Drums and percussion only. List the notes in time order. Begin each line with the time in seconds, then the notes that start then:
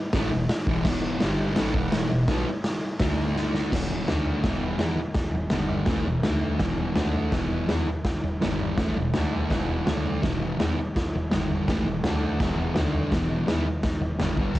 0.13 kick, snare, open hi-hat
0.49 snare, open hi-hat
0.67 kick
0.85 kick, snare, crash
1.20 snare, open hi-hat
1.56 snare, open hi-hat
1.74 kick
1.92 snare, open hi-hat
2.28 kick, snare, open hi-hat
2.64 snare, open hi-hat
3.00 kick, snare, open hi-hat
3.36 snare
3.55 snare
3.72 kick, snare, floor tom, crash
3.91 floor tom
4.08 snare, floor tom
4.25 floor tom
4.44 kick, snare, floor tom
4.62 floor tom
4.79 snare, floor tom
4.97 floor tom
5.15 kick, snare, floor tom
5.32 floor tom
5.50 snare, floor tom
5.68 floor tom
5.86 kick, snare, floor tom
6.05 floor tom
6.23 snare, floor tom
6.41 floor tom
6.60 kick, snare, floor tom
6.78 floor tom
6.96 snare, floor tom
7.14 floor tom
7.32 kick, snare, floor tom
7.51 floor tom
7.69 snare, floor tom
7.87 floor tom
8.05 kick, snare, floor tom
8.24 floor tom
8.42 snare, floor tom
8.60 floor tom
8.78 kick, snare, floor tom
8.96 floor tom
9.14 snare, floor tom
9.33 floor tom
9.50 kick, snare, floor tom
9.69 floor tom
9.87 snare, floor tom
10.05 floor tom
10.23 kick, snare, floor tom
10.41 floor tom
10.60 snare, floor tom
10.78 floor tom
10.96 kick, snare, floor tom
11.15 floor tom
11.31 snare, floor tom
11.50 floor tom
11.68 kick, snare, floor tom
11.86 floor tom
12.04 snare, floor tom
12.23 floor tom
12.40 kick, snare, floor tom
12.58 floor tom
12.76 snare, floor tom
12.94 floor tom
13.12 kick, snare, floor tom
13.30 floor tom
13.48 snare, floor tom
13.66 floor tom
13.83 kick, snare, floor tom
14.01 floor tom
14.20 snare, floor tom
14.37 kick, floor tom
14.55 kick, crash